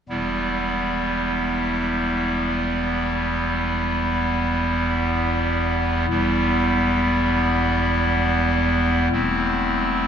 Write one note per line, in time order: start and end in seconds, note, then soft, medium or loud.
0.09 6.06 E1 medium
0.09 6.06 E2 medium
0.09 6.06 G3 soft
0.09 6.06 B3 soft
0.09 6.06 E4 soft
6.10 9.08 E1 medium
6.10 9.08 E2 medium
6.10 9.08 G3 medium
6.10 9.08 B3 medium
6.10 9.08 E4 medium
9.12 10.07 E1 medium
9.12 10.07 E2 medium
9.12 10.07 A3 medium
9.12 10.07 C4 soft
9.12 10.07 E4 medium